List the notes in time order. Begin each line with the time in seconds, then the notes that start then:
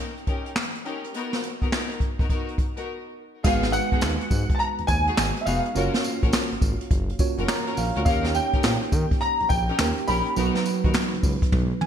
0.17 closed hi-hat
0.27 C#4 D#4 G4 A#4, kick, closed hi-hat
0.46 closed hi-hat
0.56 snare, clap
0.75 closed hi-hat
0.85 C#4 D#4 G4 A#4, closed hi-hat
1.04 closed hi-hat
1.13 B3 D#4 F#4 A#4, closed hi-hat
1.33 snare, closed hi-hat
1.43 closed hi-hat
1.61 B3 D#4 F#4 A#4, kick, closed hi-hat
1.71 B3 D#4 F#4 A#4, snare, clap
1.91 closed hi-hat
2.00 kick, closed hi-hat
2.19 B3 D#4 F#4 A#4, kick, closed hi-hat
2.29 B3 D#4 F#4 A#4, kick, closed hi-hat
2.48 closed hi-hat
2.58 kick, closed hi-hat
2.76 B3 D#4 F#4 A#4, closed hi-hat
3.44 G#1 G#3 B3 D#4 F#4 G#4 B4 F5, kick, crash, tambourine
3.63 snare, closed hi-hat
3.72 F#5, closed hi-hat, tambourine
3.92 B3 D#4 F#4 G#4, kick, closed hi-hat
4.01 D#2, snare, clap, tambourine
4.21 closed hi-hat
4.31 G#2, kick, closed hi-hat, tambourine
4.50 kick, closed hi-hat
4.55 A5
4.59 A#5, closed hi-hat
4.78 D#2, closed hi-hat
4.87 D#2 G#5, kick, closed hi-hat, tambourine
5.07 B3 D#4 F#4 G#4, closed hi-hat
5.17 G#1, snare, clap, tambourine
5.37 closed hi-hat
5.41 E5
5.46 F1 B3 D#4 F#4 G#4 F5, open hi-hat, tambourine
5.66 closed hi-hat
5.75 F#1 A#3 C#4 F4 F#4 A#4 C#5, closed hi-hat, tambourine
5.94 snare, closed hi-hat
6.04 closed hi-hat, tambourine
6.22 A#1 C#4 F4 F#4 A#4, kick, closed hi-hat
6.33 snare, clap, tambourine
6.52 G#1, closed hi-hat
6.62 G#1, kick, closed hi-hat, tambourine
6.81 closed hi-hat
6.91 F#1, kick, closed hi-hat
7.09 closed hi-hat
7.19 A#3 C#4 F4 F#4 C#5, kick, closed hi-hat, tambourine
7.38 F1 C#4 F4 F#4 A#4, closed hi-hat
7.48 A#5, snare, clap, tambourine
7.67 C#4 F4 F#4 A#4, closed hi-hat
7.77 A#1 F5, open hi-hat, tambourine
7.96 D2 C#4 F4 F#4 A#4, closed hi-hat
8.05 D#2 A#3 C#4 D#4 G4 A#4 C#5 F5, kick, closed hi-hat, tambourine
8.24 snare, closed hi-hat
8.35 G5, closed hi-hat, tambourine
8.53 C#4 D#4 G4 A#4, kick, closed hi-hat
8.63 A#2, snare, clap, tambourine
8.83 closed hi-hat
8.92 D#3, kick, closed hi-hat, tambourine
9.11 kick, closed hi-hat
9.21 A#5, closed hi-hat
9.40 A#1, closed hi-hat
9.49 A#1 G5, kick, closed hi-hat, tambourine
9.69 C#4 D#4 G4 A#4, closed hi-hat
9.79 D#2 A#3 C#4 D#4 G4 A#4, snare, clap, tambourine
9.98 closed hi-hat
10.07 A#1 C#4 D#4 G4 A#4 B5, open hi-hat, tambourine
10.27 closed hi-hat
10.36 B1 F#3 B3 D#4 F#4 A#4 B4, closed hi-hat, tambourine
10.55 snare, closed hi-hat
10.65 closed hi-hat, tambourine
10.84 D#2 B3 D#4 F#4 A#4, kick, closed hi-hat
10.94 snare, clap, tambourine
11.13 C#2, closed hi-hat
11.23 C#2, kick, open hi-hat, tambourine
11.42 kick, closed hi-hat
11.52 B1, kick, high tom
11.81 G#5, mid tom